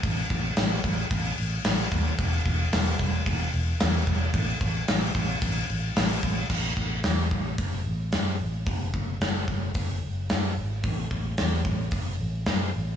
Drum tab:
CC |xxxxxxxx|xxxxxxxx|xxxxxxxx|x-------|
HH |--------|--------|--------|--o-o-o-|
SD |--o---o-|--o---o-|--o---o-|--o---o-|
BD |oo-oo--o|oo-oo--o|oo-oo--o|oo-oo---|

CC |--------|--------|
HH |o-o-o-o-|o-o-o-o-|
SD |--o---o-|--o---o-|
BD |oo-oo---|oo-oo---|